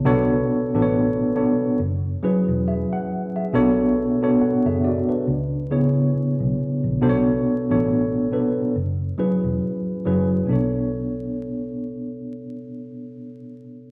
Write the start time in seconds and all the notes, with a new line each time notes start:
0.05 B1 B2 B3 D4 A4 C#5
0.74 A1 B2 B3 D4 A4 B4
0.82 C#5
1.35 B2 B3 D4 A4 C#5
1.79 F#1
2.23 F#3 C#4 E4 G#4 B4, muted fingered electric bass stroke
2.48 E1
2.68 G#4 E5
2.93 F#5
3.36 G#4 E5
3.53 B1 B2 B3 D4 A4 C#5
4.22 B2 B3 D4 A4 C#5
4.41 A4 F#5, muted fingered electric bass stroke
4.66 F#1 G#4 E5
4.84 F#4 D5
5.09 D4 B4
5.27 C#2
5.71 C#3 B3 E4 G#4 C#5
6.14 muted fingered electric bass stroke
6.40 B1
6.84 A#1
7.01 B1 B2 B3 D4 A4 C5
7.09 C#5
7.70 A1 B2 B3 D4 A4 C#5
8.31 B2 B3 D4 A4 B4
8.76 F#1
9.18 F#3 C#4 E4 G#4 B4, muted fingered electric bass stroke
9.44 E1
10.05 F#1 F#3 C#4 E4 G#4 B4
10.46 B1 B2 B3 D4
10.51 A4 C#5